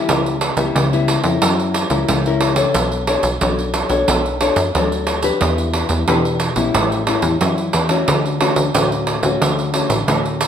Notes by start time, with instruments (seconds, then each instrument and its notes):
Already playing: nylon-string guitar G3 B3 E4
0.09 analog synth bass C#2, nylon-string guitar C#3, pandeiro
0.26 pandeiro
0.41 pandeiro
0.57 analog synth bass C#2, nylon-string guitar G3 B3 E4, pandeiro
0.75 analog synth bass C#2, nylon-string guitar C#3, pandeiro
0.93 nylon-string guitar G3 B3 E4, pandeiro
1.08 pandeiro
1.24 analog synth bass F2, nylon-string guitar C#4 E4 A#4, pandeiro
1.42 analog synth bass F#2, nylon-string guitar F#3, pandeiro
1.59 pandeiro
1.74 pandeiro
1.90 analog synth bass C#2, nylon-string guitar C#4 E4 A#4, pandeiro
2.08 analog synth bass C#2, nylon-string guitar C#3, pandeiro
2.26 nylon-string guitar C#4 E4 A#4, pandeiro
2.41 pandeiro
2.56 nylon-string guitar D4 A4 C#5, pandeiro
2.74 analog synth bass B1, nylon-string guitar B3, pandeiro
2.92 pandeiro
3.07 nylon-string guitar D4 A4 C#5, pandeiro
3.23 analog synth bass B1, pandeiro
3.41 analog synth bass B1, nylon-string guitar F#3 D4 A4 C#5, pandeiro
3.59 pandeiro
3.74 pandeiro
3.89 analog synth bass B1, nylon-string guitar D4 A4 C#5, pandeiro
4.08 analog synth bass B1, nylon-string guitar B3, pandeiro
4.26 pandeiro
4.41 nylon-string guitar D4 A4 C#5, pandeiro
4.56 analog synth bass F#2, pandeiro
4.75 analog synth bass D2, nylon-string guitar F#3 D4 A4 C#5, pandeiro
4.92 pandeiro
5.07 pandeiro
5.22 nylon-string guitar D4 G4 B4, pandeiro
5.41 analog synth bass E2, nylon-string guitar E3, pandeiro
5.58 pandeiro
5.73 nylon-string guitar D4 G4 B4, pandeiro
5.89 analog synth bass E2, pandeiro
6.08 analog synth bass E2, nylon-string guitar B2 D4 G4 B4, pandeiro
6.25 pandeiro
6.40 pandeiro
6.56 analog synth bass B1, nylon-string guitar G3 C#4 E4, pandeiro
6.74 analog synth bass A1, nylon-string guitar A2, pandeiro
6.92 pandeiro
7.07 nylon-string guitar G3 C#4 E4, pandeiro
7.22 analog synth bass E2, pandeiro
7.41 analog synth bass F#2, nylon-string guitar E3 C#4 E4, pandeiro
7.58 pandeiro
7.73 analog synth bass E2, pandeiro
7.89 nylon-string guitar A3 C#4 F#4, pandeiro
8.08 analog synth bass D2, nylon-string guitar D3, pandeiro
8.26 pandeiro
8.41 nylon-string guitar A3 C#4 F#4, pandeiro
8.56 analog synth bass D2, pandeiro
8.75 analog synth bass D2, nylon-string guitar A2 A3 C#4 F#4, pandeiro
8.92 pandeiro
9.07 pandeiro
9.23 analog synth bass D2, nylon-string guitar A3 C#4 F#4, pandeiro
9.41 analog synth bass D2, nylon-string guitar D3, pandeiro
9.59 pandeiro
9.74 nylon-string guitar A3 C#4 F#4, pandeiro
9.90 analog synth bass A1, pandeiro
10.08 analog synth bass D2, nylon-string guitar A2 A3 C#4 F#4, pandeiro
10.25 pandeiro
10.41 pandeiro